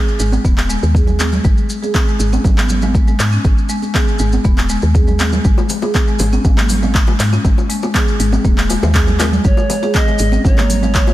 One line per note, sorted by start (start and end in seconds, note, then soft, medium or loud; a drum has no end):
0.08 maracas soft
0.19 0.38 G#1 medium
0.19 0.31 G#3 medium
0.19 muted conga medium
0.19 maracas loud
0.32 high conga loud
0.32 maracas soft
0.45 0.77 D#1 medium
0.45 0.57 B3 medium
0.45 kick loud
0.45 maracas medium
0.58 clap medium
0.58 muted conga soft
0.58 maracas soft
0.70 0.81 G#3 loud
0.70 maracas loud
0.83 1.39 D#2 medium
0.83 maracas soft
0.95 1.06 G#4 medium
0.95 kick loud
0.95 high conga medium
0.95 maracas medium
1.07 muted conga medium
1.07 low conga medium
1.07 maracas soft
1.19 1.31 G#3 medium
1.19 clap medium
1.19 high conga medium
1.19 maracas medium
1.32 low conga medium
1.32 maracas soft
1.44 1.54 G#1 loud
1.44 1.56 G#3 medium
1.44 kick loud
1.44 muted conga soft
1.44 maracas medium
1.57 maracas soft
1.70 maracas medium
1.83 1.93 G#4 loud
1.83 muted conga soft
1.83 maracas soft
1.94 kick loud
1.94 clap medium
1.94 high conga medium
1.94 maracas medium
2.08 2.14 G#3 medium
2.08 maracas soft
2.19 2.38 G#1 medium
2.19 muted conga medium
2.19 maracas medium
2.33 2.43 C#4 medium
2.33 high conga loud
2.33 maracas soft
2.44 3.14 G#1 medium
2.44 kick loud
2.44 high conga loud
2.44 low conga loud
2.44 maracas medium
2.57 2.69 B3 loud
2.57 clap medium
2.57 muted conga soft
2.57 maracas soft
2.69 low conga medium
2.69 maracas medium
2.82 2.93 G#3 medium
2.82 high conga loud
2.82 low conga medium
2.82 maracas soft
2.95 kick loud
2.95 maracas soft
3.07 3.14 G#3 medium
3.07 muted conga medium
3.07 maracas soft
3.20 3.38 G#2 medium
3.20 clap medium
3.20 maracas loud
3.32 3.43 C#4 medium
3.32 maracas soft
3.44 3.54 G#1 medium
3.44 kick loud
3.44 muted conga soft
3.44 maracas soft
3.58 maracas soft
3.69 3.81 G#3 loud
3.69 maracas medium
3.82 muted conga soft
3.82 maracas soft
3.94 4.06 G#4 medium
3.94 kick loud
3.94 clap medium
3.94 high conga medium
3.94 maracas soft
4.08 maracas soft
4.19 4.38 G#1 loud
4.19 4.31 G#3 medium
4.19 muted conga soft
4.19 maracas medium
4.32 high conga loud
4.32 maracas soft
4.44 4.77 D#1 medium
4.44 4.57 B3 medium
4.44 kick loud
4.44 maracas medium
4.57 clap medium
4.57 muted conga soft
4.57 maracas soft
4.69 4.81 G#3 medium
4.69 maracas medium
4.82 5.39 D#2 medium
4.82 maracas soft
4.95 5.06 G#4 medium
4.95 kick loud
4.95 high conga medium
4.95 maracas medium
5.07 muted conga medium
5.07 low conga medium
5.07 maracas soft
5.19 5.31 G#3 medium
5.19 clap medium
5.19 high conga medium
5.19 maracas medium
5.32 low conga medium
5.32 maracas soft
5.45 5.54 G#1 loud
5.45 5.56 G#3 medium
5.45 kick loud
5.45 muted conga soft
5.45 maracas medium
5.58 high bongo medium
5.58 maracas soft
5.69 open hi-hat medium
5.69 low bongo medium
5.69 maracas loud
5.82 5.93 G#4 loud
5.82 high bongo medium
5.82 muted conga soft
5.82 maracas soft
5.94 kick loud
5.94 clap medium
5.94 high conga medium
5.94 maracas soft
6.08 6.14 G#3 medium
6.08 maracas soft
6.19 6.38 G#1 medium
6.19 open hi-hat medium
6.19 low bongo loud
6.19 muted conga soft
6.19 maracas loud
6.33 6.43 C#4 medium
6.33 high conga loud
6.33 maracas soft
6.44 7.14 G#1 medium
6.44 kick loud
6.44 high conga loud
6.44 low conga loud
6.44 maracas soft
6.57 6.69 A#3 loud
6.57 clap medium
6.57 low bongo medium
6.57 muted conga soft
6.57 maracas soft
6.69 open hi-hat medium
6.69 low conga medium
6.69 maracas medium
6.82 6.93 G#3 medium
6.82 high conga loud
6.82 low conga medium
6.82 maracas soft
6.95 kick loud
6.95 clap medium
6.95 maracas soft
7.07 7.14 G#3 medium
7.07 high bongo medium
7.07 low bongo medium
7.07 muted conga medium
7.07 maracas soft
7.20 7.38 G#2 medium
7.20 clap medium
7.20 open hi-hat medium
7.20 maracas loud
7.33 7.44 C#4 medium
7.33 high bongo medium
7.33 maracas soft
7.45 7.54 G#1 loud
7.45 kick loud
7.45 low bongo medium
7.45 muted conga medium
7.45 maracas soft
7.58 high bongo medium
7.58 maracas soft
7.70 7.81 G#3 loud
7.70 open hi-hat medium
7.70 maracas medium
7.82 high bongo medium
7.82 muted conga soft
7.82 maracas soft
7.94 8.06 G#4 medium
7.94 kick loud
7.94 clap loud
7.94 low bongo medium
7.94 high conga medium
7.94 maracas medium
8.08 maracas soft
8.20 8.38 G#1 medium
8.20 8.31 G#3 medium
8.20 open hi-hat medium
8.20 muted conga medium
8.20 maracas medium
8.32 low bongo medium
8.32 high conga loud
8.32 maracas soft
8.45 8.77 D#1 medium
8.45 8.57 A#3 medium
8.45 kick loud
8.45 maracas soft
8.57 clap medium
8.57 muted conga soft
8.57 maracas soft
8.69 8.81 G#3 loud
8.69 open hi-hat medium
8.69 high bongo medium
8.69 maracas medium
8.83 9.39 D#2 loud
8.83 low bongo loud
8.83 maracas soft
8.94 9.06 G#4 medium
8.94 kick loud
8.94 clap loud
8.94 high conga medium
8.94 maracas soft
9.07 muted conga medium
9.07 low conga medium
9.07 maracas soft
9.19 9.27 G#3 loud
9.19 9.25 A#4 medium
9.19 clap medium
9.19 open hi-hat medium
9.19 high bongo medium
9.19 low bongo medium
9.19 high conga medium
9.19 maracas medium
9.32 low conga medium
9.32 maracas soft
9.44 9.54 G#1 loud
9.44 9.56 G#3 medium
9.44 9.96 C#5 loud
9.44 kick loud
9.44 muted conga medium
9.44 maracas soft
9.57 high bongo medium
9.57 maracas soft
9.70 open hi-hat medium
9.70 low bongo medium
9.70 maracas medium
9.83 9.93 G#4 loud
9.83 high bongo medium
9.83 muted conga soft
9.83 maracas soft
9.94 10.44 D#5 loud
9.94 kick loud
9.94 clap loud
9.94 high conga medium
9.94 maracas medium
10.08 10.14 G#3 medium
10.08 low bongo medium
10.08 maracas soft
10.19 10.38 G#1 medium
10.19 open hi-hat medium
10.19 muted conga soft
10.19 maracas medium
10.32 10.44 C#4 medium
10.32 high conga loud
10.32 maracas soft
10.44 11.14 G#1 medium
10.44 11.14 C#5 loud
10.44 kick loud
10.44 high conga loud
10.44 low conga loud
10.44 maracas medium
10.58 10.69 A#3 loud
10.58 clap medium
10.58 low bongo medium
10.58 muted conga soft
10.58 maracas soft
10.70 open hi-hat medium
10.70 low conga medium
10.70 maracas medium
10.82 10.94 G#3 medium
10.82 high conga loud
10.82 low conga medium
10.82 maracas soft
10.95 kick loud
10.95 clap loud
10.95 low bongo medium
10.95 maracas medium
11.07 11.14 G#3 medium
11.07 high bongo medium
11.07 muted conga medium
11.07 maracas soft